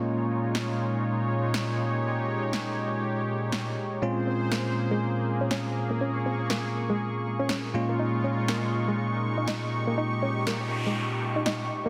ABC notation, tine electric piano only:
X:1
M:4/4
L:1/8
Q:"Swing 16ths" 1/4=121
K:Ebmix
V:1 name="Tine electric piano"
[B,,A,B,DF]8- | [B,,A,B,DF]6- [B,,A,B,DF] z | [B,,A,CDF]8- | [B,,A,CDF]6- [B,,A,CDF] [B,,A,B,DF]- |
[B,,A,B,DF]8- | [B,,A,B,DF]6- [B,,A,B,DF] z |]